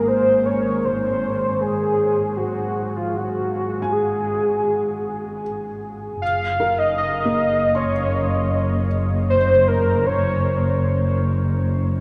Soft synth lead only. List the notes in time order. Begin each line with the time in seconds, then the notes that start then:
0.08 C5
0.46 C#5
0.85 C5
1.61 G#4
2.37 F#4
2.96 F4
3.16 F#4
3.92 G#4
6.22 F5
6.78 D#5
6.98 D#5
7.76 C#5
9.30 C5
9.68 A#4
10.06 C#5